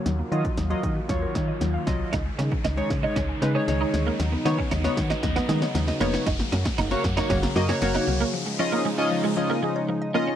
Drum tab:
HH |x-xxxxx-x-x-x-x-|x-x-xxx-x-x-x-x-|x-x-xxx-x-x-x-x-|x-x-xxx-x-x-x-x-|
SD |o---o---o-o-o-o-|o-o-o-o-o-o-o-o-|o-o-oooooooooooo|oooooooooooooo--|
BD |---o--o-o-o---o-|o--o--o-o-------|---o--o-o-------|o--o--o-o-------|

HH |----------------|
SD |----------------|
BD |----------------|